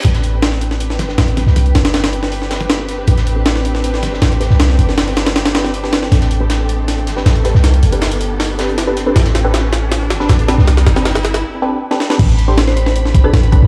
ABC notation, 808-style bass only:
X:1
M:4/4
L:1/16
Q:1/4=158
K:Am
V:1 name="808-style bass" clef=bass
A,,,8- A,,,2 G,,,2 A,,,3 C,,- | C,,2 G,,,12- G,,,2 | A,,,8- A,,,2 G,,,2 A,,,3 C,,- | C,,2 G,,,12- G,,,2 |
A,,,8- A,,,2 G,,,2 A,,,3 C,,- | C,,2 G,,,12- G,,,2 | A,,,8- A,,,2 G,,,2 A,,,3 C,,- | C,,2 G,,,6 z8 |
A,,,8- A,,,2 G,,,2 A,,,3 C,, |]